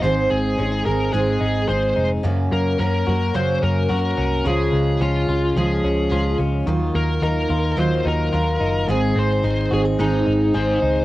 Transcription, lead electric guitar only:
X:1
M:4/4
L:1/16
Q:1/4=108
K:Abmix
V:1 name="Lead electric guitar"
c2 A4 B2 A4 c3 z | z2 B2 B4 c2 B6 | A4 F4 A6 z2 | z2 B2 B4 c2 B6 |
A2 c4 A2 E4 c4 |]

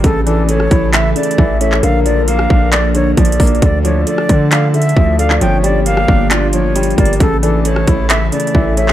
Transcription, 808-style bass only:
X:1
M:4/4
L:1/8
Q:1/4=134
K:Aphr
V:1 name="808-style bass" clef=bass
A,,,3 A,,,2 z A,,,2 | B,,,3 B,,,3 B,,, B,,, | D,,2 z D,3 D,,2 | G,,,3 G,,,4 G,,, |
A,,,3 A,,,2 z A,,,2 |]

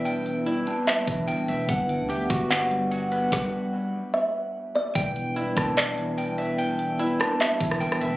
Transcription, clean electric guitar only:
X:1
M:4/4
L:1/8
Q:1/4=147
K:Em
V:1 name="Clean electric guitar"
[E,Deg]2 E D2 E, g e | f2 G F2 G, f B- | B4- B z3 | g2 E D2 E, g e |
g2 E D2 E, g e |]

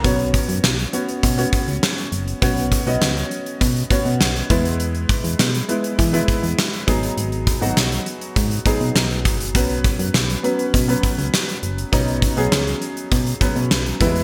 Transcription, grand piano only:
X:1
M:4/4
L:1/16
Q:1/4=101
K:G#m
V:1 name="Grand piano"
[B,CFc]4- [B,CFc] z [B,CFc]2 z [B,CFc]6 z | [B,CFc]2 z [B,CFd]6 z [B,CFc]4 [G,B,EB]2- | [G,B,EB]4 z2 [G,B,EB]2 z [G,B,EB]4- [G,B,EB] [F,B,DG]2- | [F,B,DG]2 z [F,B,DF]6 z [F,B,DG]4- [F,B,DG] z |
[F,B,CB]4- [F,B,CB] z [F,B,CB]2 z [F,B,CB]6 z | [F,B,CD]2 z [F,B,CG]6 z [F,B,CB]4 [=G,^G,B,EB]2 |]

